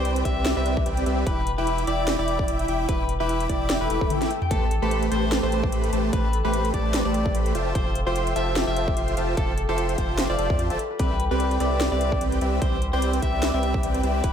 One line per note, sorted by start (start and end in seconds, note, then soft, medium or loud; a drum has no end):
0.00 0.23 C2 medium
0.00 0.23 C4 medium
0.00 0.23 G4 medium
0.00 0.45 G4 loud
0.00 0.23 B4 medium
0.00 0.65 B4 medium
0.00 0.19 C5 loud
0.00 0.23 D5 medium
0.00 0.23 G5 medium
0.00 0.25 G5 medium
0.05 0.36 E5 medium
0.05 closed hi-hat medium
0.16 closed hi-hat medium
0.25 0.55 C2 loud
0.25 0.54 C4 loud
0.25 0.54 G4 medium
0.25 0.54 B4 medium
0.25 0.54 D5 medium
0.25 0.49 E5 loud
0.25 0.54 E5 loud
0.25 1.06 G5 medium
0.25 kick medium
0.25 closed hi-hat medium
0.37 0.86 E5 medium
0.45 0.77 G4 medium
0.45 snare loud
0.45 closed hi-hat medium
0.57 0.84 C2 loud
0.57 0.84 C4 medium
0.57 0.84 G4 medium
0.57 0.84 B4 medium
0.57 0.84 D5 medium
0.57 0.84 E5 loud
0.57 0.88 E5 medium
0.66 1.46 B4 medium
0.66 closed hi-hat medium
0.77 1.26 G4 loud
0.77 kick loud
0.86 1.05 C2 loud
0.86 1.04 C4 medium
0.86 1.04 G4 medium
0.86 1.04 B4 medium
0.86 1.04 D5 medium
0.86 1.17 E5 medium
0.86 1.04 G5 medium
0.86 closed hi-hat medium
0.97 closed hi-hat medium
1.06 1.25 C2 medium
1.06 1.24 C4 medium
1.06 1.24 G4 medium
1.06 1.24 B4 medium
1.06 1.24 D5 medium
1.06 1.24 E5 medium
1.06 1.87 G5 medium
1.06 closed hi-hat medium
1.18 1.67 E5 medium
1.27 1.56 E1 loud
1.27 1.41 E4 medium
1.27 1.58 G4 medium
1.27 1.51 B4 loud
1.27 1.41 E5 medium
1.27 kick loud
1.27 closed hi-hat medium
1.47 2.28 B4 medium
1.47 closed hi-hat medium
1.58 1.86 E1 loud
1.58 1.85 E4 medium
1.58 2.07 G4 loud
1.58 1.82 B4 medium
1.58 1.85 E5 medium
1.58 1.85 G5 medium
1.58 1.85 B5 medium
1.58 1.85 D6 medium
1.67 1.98 E5 medium
1.67 closed hi-hat medium
1.78 closed hi-hat medium
1.87 2.17 E1 loud
1.87 2.16 E4 loud
1.87 2.12 D5 loud
1.87 2.16 E5 medium
1.87 2.16 G5 medium
1.87 2.68 G5 medium
1.87 2.16 B5 medium
1.87 2.16 D6 loud
1.87 closed hi-hat medium
1.99 2.48 E5 medium
2.08 2.39 G4 medium
2.08 snare loud
2.08 closed hi-hat medium
2.19 2.46 E1 loud
2.19 2.46 E4 medium
2.19 2.50 D5 medium
2.19 2.46 E5 medium
2.19 2.46 G5 medium
2.19 2.46 B5 medium
2.19 2.46 D6 loud
2.28 3.09 B4 medium
2.28 closed hi-hat medium
2.39 2.88 G4 loud
2.39 kick loud
2.48 2.67 E1 loud
2.48 2.66 E4 medium
2.48 2.66 E5 medium
2.48 2.79 E5 medium
2.48 2.66 G5 medium
2.48 2.66 B5 medium
2.48 2.66 D6 medium
2.48 closed hi-hat medium
2.59 closed hi-hat medium
2.68 2.87 E1 loud
2.68 2.87 E4 medium
2.68 2.87 E5 medium
2.68 2.87 G5 medium
2.68 3.49 G5 medium
2.68 2.87 B5 medium
2.68 2.87 D6 medium
2.68 closed hi-hat medium
2.80 3.29 E5 medium
2.89 3.18 E1 loud
2.89 3.04 E4 medium
2.89 3.20 G4 medium
2.89 3.13 B4 loud
2.89 3.04 E5 medium
2.89 3.04 D6 loud
2.89 kick loud
2.89 closed hi-hat medium
3.09 4.97 B4 medium
3.09 closed hi-hat medium
3.20 3.48 E1 loud
3.20 3.47 E4 medium
3.20 3.70 G4 loud
3.20 3.44 B4 medium
3.20 3.47 E5 medium
3.20 3.47 G5 medium
3.20 3.47 B5 medium
3.20 3.47 D6 medium
3.29 3.60 E5 medium
3.29 closed hi-hat medium
3.41 closed hi-hat medium
3.49 3.79 E1 loud
3.49 3.78 E4 loud
3.49 3.74 D5 medium
3.49 3.78 E5 medium
3.49 3.78 G5 medium
3.49 4.10 G5 medium
3.49 3.78 B5 medium
3.49 kick medium
3.49 closed hi-hat medium
3.61 4.30 E5 medium
3.70 3.90 G4 medium
3.70 snare loud
3.70 closed hi-hat medium
3.70 swell medium
3.81 3.88 E1 loud
3.81 3.88 E4 medium
3.81 4.12 B4 medium
3.81 3.88 E5 medium
3.81 3.88 G5 medium
3.81 3.88 B5 medium
3.81 3.88 D6 loud
3.90 3.99 E1 medium
3.90 4.00 E4 medium
3.90 4.50 G4 medium
3.90 4.00 E5 medium
3.90 4.00 G5 medium
3.90 4.00 B5 medium
3.90 4.00 D6 loud
3.90 closed hi-hat medium
4.01 4.10 E1 loud
4.01 4.19 E4 loud
4.01 4.19 E5 medium
4.01 4.19 G5 medium
4.01 4.19 B5 medium
4.01 4.97 B5 medium
4.01 4.19 D6 loud
4.01 kick loud
4.10 4.41 G5 loud
4.10 closed hi-hat medium
4.10 high tom medium
4.21 4.29 E4 loud
4.21 4.29 E5 medium
4.21 4.29 G5 medium
4.21 4.29 B5 medium
4.21 4.29 D6 loud
4.21 snare medium
4.21 closed hi-hat medium
4.31 4.62 E5 medium
4.31 closed hi-hat medium
4.42 5.97 G5 loud
4.42 mid tom medium
4.51 4.80 A1 medium
4.51 4.66 A3 medium
4.51 4.66 G4 medium
4.51 4.82 G4 medium
4.51 4.75 A4 loud
4.51 4.66 B4 medium
4.51 4.66 C5 medium
4.51 4.66 A5 loud
4.51 kick loud
4.51 closed hi-hat medium
4.62 5.11 E5 medium
4.71 5.52 A4 medium
4.71 closed hi-hat medium
4.82 5.10 A1 loud
4.82 5.09 A3 medium
4.82 5.09 G4 medium
4.82 5.31 G4 loud
4.82 5.06 A4 medium
4.82 5.09 B4 medium
4.82 5.10 C5 medium
4.82 5.09 B5 medium
4.91 5.23 C5 medium
4.91 closed hi-hat medium
5.03 closed hi-hat medium
5.12 5.41 A1 loud
5.12 5.40 A3 loud
5.12 5.40 G4 medium
5.12 5.40 B4 medium
5.12 5.40 C5 medium
5.12 5.36 C5 loud
5.12 5.43 E5 medium
5.12 5.40 A5 loud
5.12 closed hi-hat medium
5.23 5.72 C5 medium
5.32 5.63 G4 medium
5.32 snare loud
5.32 closed hi-hat medium
5.43 5.71 A1 loud
5.43 5.70 A3 medium
5.43 5.70 G4 medium
5.43 5.70 B4 medium
5.43 5.70 C5 medium
5.43 5.74 C5 medium
5.43 5.92 E5 medium
5.43 5.70 A5 loud
5.52 6.33 A4 medium
5.52 closed hi-hat medium
5.63 6.13 G4 loud
5.63 kick loud
5.72 5.91 A1 loud
5.72 5.91 A3 medium
5.72 5.91 G4 medium
5.72 5.91 B4 medium
5.72 6.04 C5 medium
5.72 5.91 C5 medium
5.72 5.91 B5 medium
5.72 closed hi-hat medium
5.84 closed hi-hat medium
5.93 6.11 A1 medium
5.93 6.11 A3 medium
5.93 6.11 G4 medium
5.93 6.11 B4 medium
5.93 6.11 C5 medium
5.93 6.24 E5 medium
5.93 6.11 A5 medium
5.93 closed hi-hat medium
6.04 6.53 C5 medium
6.13 6.42 A1 loud
6.13 6.28 A3 medium
6.13 6.44 G4 medium
6.13 6.28 G4 medium
6.13 6.28 B4 medium
6.13 6.37 B4 loud
6.13 6.28 C5 medium
6.13 6.28 A5 loud
6.13 kick loud
6.13 closed hi-hat medium
6.24 6.73 E5 medium
6.33 7.14 A4 medium
6.33 closed hi-hat medium
6.44 6.72 A1 loud
6.44 6.72 A3 medium
6.44 6.94 G4 loud
6.44 6.72 G4 medium
6.44 6.72 B4 medium
6.44 6.68 B4 loud
6.44 6.72 C5 medium
6.44 6.72 B5 medium
6.54 6.85 C5 medium
6.54 closed hi-hat medium
6.65 closed hi-hat medium
6.74 7.03 A1 loud
6.74 7.03 A3 loud
6.74 7.03 G4 medium
6.74 7.03 B4 medium
6.74 7.03 C5 medium
6.74 6.98 D5 medium
6.74 7.05 E5 medium
6.74 7.03 A5 loud
6.74 kick medium
6.74 closed hi-hat medium
6.85 7.34 C5 medium
6.94 7.25 G4 medium
6.94 snare loud
6.94 closed hi-hat medium
7.05 7.33 A1 loud
7.05 7.32 A3 medium
7.05 7.32 G4 medium
7.05 7.32 B4 medium
7.05 7.32 C5 medium
7.05 7.36 D5 medium
7.05 7.61 E5 medium
7.05 7.32 A5 loud
7.14 7.95 A4 medium
7.14 closed hi-hat medium
7.26 7.75 G4 loud
7.26 kick loud
7.35 7.53 A1 loud
7.35 7.53 A3 medium
7.35 7.53 G4 medium
7.35 7.53 B4 medium
7.35 7.53 C5 medium
7.35 9.32 C5 medium
7.35 7.53 B5 medium
7.35 closed hi-hat medium
7.46 closed hi-hat medium
7.55 7.73 F1 medium
7.55 7.73 F4 medium
7.55 7.73 C5 medium
7.55 7.73 E5 medium
7.55 7.72 F5 medium
7.55 7.73 G5 medium
7.55 7.73 A5 medium
7.55 closed hi-hat medium
7.66 7.92 E5 medium
7.75 8.04 F1 medium
7.75 7.90 F4 medium
7.75 8.06 G4 medium
7.75 7.99 C5 loud
7.75 7.90 C5 medium
7.75 7.90 G5 medium
7.75 7.90 A5 loud
7.75 kick loud
7.75 closed hi-hat medium
7.86 8.22 F5 medium
7.95 8.76 A4 medium
7.95 closed hi-hat medium
8.07 8.34 F1 loud
8.07 8.34 F4 medium
8.07 8.56 G4 loud
8.07 8.34 C5 medium
8.07 8.30 C5 loud
8.07 8.34 E5 medium
8.07 8.34 G5 medium
8.07 8.34 C6 medium
8.16 8.42 E5 medium
8.16 closed hi-hat medium
8.27 closed hi-hat medium
8.36 8.65 F1 loud
8.36 8.65 F4 loud
8.36 8.65 C5 medium
8.36 8.65 E5 medium
8.36 8.60 E5 loud
8.36 8.53 F5 medium
8.36 8.65 G5 medium
8.36 8.65 A5 loud
8.36 closed hi-hat medium
8.47 8.74 E5 medium
8.56 8.87 G4 medium
8.56 snare loud
8.56 closed hi-hat medium
8.67 8.95 F1 loud
8.67 8.95 F4 medium
8.67 8.95 C5 medium
8.67 8.95 E5 medium
8.67 8.98 E5 medium
8.67 9.03 F5 medium
8.67 8.95 G5 medium
8.67 8.95 A5 loud
8.76 9.57 A4 medium
8.76 closed hi-hat medium
8.88 9.37 G4 loud
8.88 kick loud
8.97 9.15 F1 loud
8.97 9.15 F4 medium
8.97 9.15 C5 medium
8.97 9.15 E5 medium
8.97 9.23 E5 medium
8.97 9.15 G5 medium
8.97 9.15 C6 medium
8.97 closed hi-hat medium
9.08 closed hi-hat medium
9.17 9.36 F1 loud
9.17 9.35 F4 medium
9.17 9.35 C5 medium
9.17 9.35 E5 medium
9.17 9.34 F5 medium
9.17 9.35 G5 medium
9.17 9.35 A5 medium
9.17 closed hi-hat medium
9.28 9.55 E5 medium
9.37 9.67 F1 loud
9.37 9.52 F4 medium
9.37 9.69 G4 medium
9.37 9.62 A4 loud
9.37 9.52 C5 medium
9.37 9.52 E5 medium
9.37 9.52 A5 loud
9.37 kick loud
9.37 closed hi-hat medium
9.49 9.84 F5 medium
9.58 10.70 A4 medium
9.58 closed hi-hat medium
9.69 9.96 F1 loud
9.69 9.96 F4 medium
9.69 10.18 G4 loud
9.69 9.92 A4 loud
9.69 9.96 C5 medium
9.69 9.96 E5 medium
9.69 9.96 G5 medium
9.69 9.96 C6 medium
9.78 10.04 E5 medium
9.78 closed hi-hat medium
9.89 closed hi-hat medium
9.98 10.27 F1 loud
9.98 10.27 F4 loud
9.98 10.27 C5 medium
9.98 10.23 C5 medium
9.98 10.27 E5 medium
9.98 10.15 F5 medium
9.98 10.27 G5 medium
9.98 10.27 A5 loud
9.98 kick medium
9.98 closed hi-hat medium
10.09 10.36 E5 medium
10.18 10.50 G4 medium
10.18 snare loud
10.18 closed hi-hat medium
10.30 10.37 F1 loud
10.30 10.37 F4 medium
10.30 10.37 C5 medium
10.30 10.61 D5 loud
10.30 10.37 E5 medium
10.30 11.46 F5 medium
10.30 10.37 G5 medium
10.30 10.37 A5 loud
10.38 10.51 F1 medium
10.38 10.48 F4 medium
10.38 10.48 C5 medium
10.38 10.59 C5 medium
10.38 10.48 E5 medium
10.38 10.48 G5 medium
10.38 10.48 A5 loud
10.38 closed hi-hat medium
10.50 10.72 F2 medium
10.50 10.67 F4 loud
10.50 10.99 G4 medium
10.50 10.67 C5 medium
10.50 10.67 E5 medium
10.50 kick loud
10.59 10.85 C5 loud
10.59 closed hi-hat medium
10.70 10.76 F1 medium
10.70 10.78 F4 medium
10.70 12.90 A4 loud
10.70 10.78 C5 medium
10.70 10.78 E5 medium
10.70 10.78 G5 medium
10.70 10.78 A5 loud
10.70 closed hi-hat medium
10.79 10.90 B4 medium
10.79 closed hi-hat medium
10.90 11.19 B4 medium
10.99 11.29 C2 loud
10.99 11.14 C4 medium
10.99 11.14 G4 medium
10.99 11.31 G4 medium
10.99 11.14 B4 medium
10.99 11.24 B4 loud
10.99 11.14 D5 medium
10.99 11.14 E5 loud
10.99 kick loud
10.99 closed hi-hat medium
11.11 11.60 G5 medium
11.20 12.01 B4 medium
11.20 closed hi-hat medium
11.31 11.59 C2 loud
11.31 11.58 C4 medium
11.31 11.80 G4 loud
11.31 11.58 G4 medium
11.31 11.55 B4 medium
11.31 11.58 B4 medium
11.31 11.58 D5 medium
11.31 11.58 G5 medium
11.40 11.71 E5 medium
11.40 closed hi-hat medium
11.51 closed hi-hat medium
11.60 11.90 C2 loud
11.60 11.89 C4 loud
11.60 11.89 G4 medium
11.60 11.89 B4 medium
11.60 11.89 D5 medium
11.60 11.85 D5 medium
11.60 11.89 E5 loud
11.60 11.92 G5 medium
11.60 closed hi-hat medium
11.72 12.21 E5 medium
11.81 12.12 G4 medium
11.81 snare loud
11.81 closed hi-hat medium
11.92 12.19 C2 loud
11.92 12.19 C4 medium
11.92 12.19 G4 medium
11.92 12.19 B4 medium
11.92 12.19 D5 medium
11.92 12.23 D5 medium
11.92 12.19 E5 loud
11.92 12.41 G5 medium
12.01 12.82 B4 medium
12.01 closed hi-hat medium
12.12 12.61 G4 loud
12.12 kick loud
12.21 12.40 C2 loud
12.21 12.39 C4 medium
12.21 12.39 G4 medium
12.21 12.39 B4 medium
12.21 12.39 D5 medium
12.21 12.52 E5 medium
12.21 12.39 G5 medium
12.21 closed hi-hat medium
12.32 closed hi-hat medium
12.41 12.60 C2 loud
12.41 12.60 C4 medium
12.41 12.60 G4 medium
12.41 12.60 B4 medium
12.41 12.60 D5 medium
12.41 12.60 E5 medium
12.41 12.73 G5 medium
12.41 closed hi-hat medium
12.53 13.02 E5 medium
12.62 12.91 C2 loud
12.62 12.77 C4 medium
12.62 12.77 G4 medium
12.62 12.93 G4 medium
12.62 12.77 B4 medium
12.62 12.86 C5 loud
12.62 12.77 D5 medium
12.62 12.77 E5 loud
12.62 kick loud
12.62 closed hi-hat medium
12.73 13.22 G5 medium
12.82 13.63 B4 medium
12.82 closed hi-hat medium
12.93 13.21 C2 loud
12.93 13.20 C4 medium
12.93 13.20 G4 medium
12.93 13.42 G4 loud
12.93 13.20 B4 medium
12.93 13.17 C5 loud
12.93 13.20 D5 medium
12.93 13.20 G5 medium
13.02 13.33 E5 medium
13.02 closed hi-hat medium
13.13 closed hi-hat medium
13.22 13.52 C2 loud
13.22 13.51 C4 loud
13.22 13.51 G4 medium
13.22 13.51 B4 medium
13.22 13.51 D5 medium
13.22 13.51 E5 loud
13.22 13.47 E5 medium
13.22 13.54 G5 medium
13.22 kick medium
13.22 closed hi-hat medium
13.34 13.83 E5 medium
13.43 13.74 G4 medium
13.43 snare loud
13.43 closed hi-hat medium
13.54 13.81 C2 loud
13.54 13.81 C4 medium
13.54 13.81 G4 medium
13.54 13.81 B4 medium
13.54 13.81 D5 medium
13.54 13.81 E5 loud
13.54 13.85 E5 loud
13.54 14.03 G5 medium
13.63 14.33 B4 medium
13.63 closed hi-hat medium
13.74 14.23 G4 loud
13.74 kick loud
13.83 14.02 C2 loud
13.83 14.01 C4 medium
13.83 14.01 G4 medium
13.83 14.01 B4 medium
13.83 14.01 D5 medium
13.83 14.14 E5 medium
13.83 14.01 G5 medium
13.83 closed hi-hat medium
13.95 closed hi-hat medium
14.03 14.22 C2 loud
14.03 14.22 C4 medium
14.03 14.22 G4 medium
14.03 14.22 B4 medium
14.03 14.22 D5 medium
14.03 14.22 E5 medium
14.03 14.33 G5 medium
14.03 closed hi-hat medium
14.15 14.33 E5 medium
14.24 14.33 E1 loud
14.24 14.33 E4 medium
14.24 14.33 G4 medium
14.24 14.33 B4 loud
14.24 kick loud
14.24 closed hi-hat medium